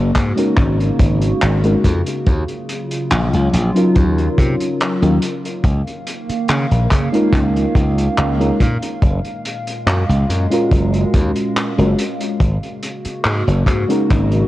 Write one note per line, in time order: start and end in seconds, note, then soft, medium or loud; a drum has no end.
0.00 0.10 F#1 medium
0.00 5.19 C#3 medium
0.00 2.23 A#3 medium
0.00 2.23 F#4 medium
0.15 0.32 G#2 medium
0.15 kick medium
0.15 clap medium
0.15 closed hi-hat loud
0.36 1.58 G#3 medium
0.36 1.58 C#4 medium
0.36 1.59 D#4 medium
0.36 1.59 F#4 medium
0.36 1.60 A#4 medium
0.36 closed hi-hat medium
0.57 0.89 G#1 medium
0.57 kick loud
0.57 clap medium
0.57 closed hi-hat medium
0.81 closed hi-hat soft
1.00 1.32 G#1 medium
1.00 kick loud
1.00 closed hi-hat loud
1.22 closed hi-hat medium
1.42 1.74 G#1 medium
1.42 clap loud
1.42 closed hi-hat medium
1.64 1.90 G#3 medium
1.64 1.90 C#4 medium
1.64 1.91 D#4 medium
1.64 1.91 F#4 medium
1.64 1.91 A#4 medium
1.64 closed hi-hat soft
1.84 2.01 F2 medium
1.84 kick soft
1.84 closed hi-hat medium
2.06 closed hi-hat medium
2.26 2.43 D#2 medium
2.26 5.19 F#3 medium
2.26 5.19 F4 medium
2.26 kick loud
2.26 closed hi-hat medium
2.48 closed hi-hat soft
2.69 closed hi-hat medium
2.91 closed hi-hat medium
3.11 3.28 A#1 medium
3.11 clap loud
3.11 closed hi-hat medium
3.33 3.48 C#2 medium
3.33 closed hi-hat soft
3.53 3.70 A#1 medium
3.53 closed hi-hat loud
3.74 4.96 F#3 medium
3.74 4.97 C#4 medium
3.74 4.97 D#4 medium
3.74 4.98 F4 medium
3.74 4.98 A#4 medium
3.74 closed hi-hat medium
3.95 4.28 D#2 medium
3.95 kick loud
3.95 closed hi-hat medium
4.18 closed hi-hat soft
4.38 4.54 C3 medium
4.38 kick medium
4.38 closed hi-hat medium
4.60 closed hi-hat medium
4.80 clap loud
4.80 closed hi-hat medium
5.01 5.17 D#2 medium
5.01 5.20 F#3 medium
5.01 5.20 C#4 medium
5.01 5.20 D#4 medium
5.01 5.20 F4 medium
5.01 5.20 A#4 medium
5.01 closed hi-hat soft
5.22 8.99 D#3 medium
5.22 8.99 A#3 medium
5.22 12.36 F5 medium
5.22 closed hi-hat loud
5.45 closed hi-hat medium
5.64 5.81 C#2 medium
5.64 kick loud
5.64 closed hi-hat medium
5.87 closed hi-hat soft
6.07 closed hi-hat medium
6.29 muted slap bass stroke soft
6.29 closed hi-hat medium
6.48 6.66 C#3 medium
6.48 clap loud
6.48 closed hi-hat medium
6.71 6.86 A#1 medium
6.71 closed hi-hat soft
6.91 7.08 C#3 medium
6.91 kick medium
6.91 clap medium
6.91 closed hi-hat medium
7.12 8.34 G#3 medium
7.12 8.35 C#4 medium
7.12 8.35 D#4 medium
7.12 8.35 F4 medium
7.12 8.36 A#4 medium
7.12 closed hi-hat medium
7.33 7.65 C#2 medium
7.33 kick loud
7.33 clap soft
7.33 closed hi-hat medium
7.56 closed hi-hat soft
7.75 8.07 C#2 medium
7.75 kick loud
7.75 closed hi-hat medium
7.98 closed hi-hat medium
8.17 8.50 C#2 medium
8.17 clap loud
8.17 closed hi-hat medium
8.39 8.66 G#3 medium
8.39 8.66 C#4 medium
8.39 8.66 D#4 medium
8.39 8.67 F4 medium
8.39 8.67 A#4 medium
8.39 closed hi-hat soft
8.60 8.77 A#2 medium
8.60 kick medium
8.60 closed hi-hat medium
8.83 closed hi-hat medium
9.02 9.19 F#1 medium
9.02 12.37 A#2 medium
9.02 12.37 G#3 medium
9.02 kick loud
9.02 closed hi-hat medium
9.25 closed hi-hat soft
9.45 closed hi-hat medium
9.67 closed hi-hat medium
9.87 10.03 F#2 medium
9.87 clap loud
9.87 closed hi-hat medium
10.09 10.24 C#2 medium
10.09 closed hi-hat soft
10.29 10.46 F#2 medium
10.29 closed hi-hat medium
10.50 11.72 G#3 medium
10.50 11.73 C#4 medium
10.50 11.73 F4 medium
10.50 11.73 F#4 medium
10.50 11.74 A#4 medium
10.50 closed hi-hat medium
10.71 11.03 F#1 medium
10.71 kick loud
10.71 closed hi-hat medium
10.94 closed hi-hat soft
11.14 11.30 D#2 medium
11.14 kick medium
11.14 closed hi-hat medium
11.36 closed hi-hat medium
11.57 clap loud
11.57 closed hi-hat medium
11.78 11.93 F#1 medium
11.78 12.04 G#3 medium
11.78 12.04 C#4 medium
11.78 12.04 F4 medium
11.78 12.05 F#4 medium
11.78 12.05 A#4 medium
11.78 closed hi-hat soft
11.99 closed hi-hat medium
12.21 closed hi-hat medium
12.40 12.57 G#1 medium
12.40 14.48 C#3 medium
12.40 14.48 A#3 medium
12.40 14.48 F#4 medium
12.40 kick loud
12.40 closed hi-hat medium
12.63 closed hi-hat soft
12.83 closed hi-hat medium
13.05 muted slap bass stroke soft
13.05 closed hi-hat medium
13.24 13.42 G#2 medium
13.24 clap loud
13.24 closed hi-hat medium
13.47 13.62 F#1 medium
13.47 closed hi-hat soft
13.66 13.83 G#2 medium
13.66 kick medium
13.66 clap soft
13.66 closed hi-hat medium
13.88 14.48 G#3 medium
13.88 14.48 C#4 medium
13.88 14.48 D#4 medium
13.88 14.48 F#4 medium
13.88 14.48 A#4 medium
13.88 closed hi-hat medium
14.10 14.42 G#1 medium
14.10 kick loud
14.10 clap medium
14.10 closed hi-hat medium
14.31 closed hi-hat soft